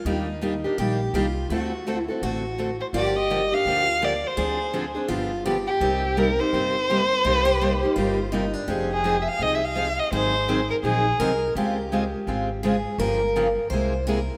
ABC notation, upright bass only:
X:1
M:4/4
L:1/8
Q:"Swing" 1/4=167
K:Cm
V:1 name="Upright bass" clef=bass
E,,4 B,,,2 C,,2 | D,,4 =A,,,4 | G,,,4 D,,4 | D,,4 G,,,4 |
C,,4 G,,,4 | C,,4 G,,,4 | [K:Fm] F,,,4 C,,4 | A,,,4 B,,,2 C,,2 |
D,,4 A,,,4 | G,,,4 C,,4 |]